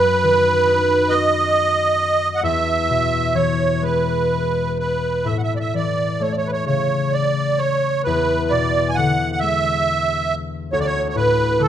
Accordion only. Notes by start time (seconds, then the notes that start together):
Already playing: B4
1.09 D#5
2.35 F#5
2.43 E5
3.35 C#5
3.83 B4
4.79 B4
5.25 E5
5.38 F#5
5.43 E5
5.56 D5
5.60 E5
5.75 D5
6.22 C#5
6.32 D5
6.37 C#5
6.47 B4
6.53 C#5
6.66 C#5
7.13 D5
7.59 C#5
8.04 B4
8.50 D5
8.89 G#5
8.95 F#5
9.32 F#5
9.39 E5
10.73 C#5
10.80 D5
10.86 C#5
11.09 C#5
11.16 B4
11.60 A4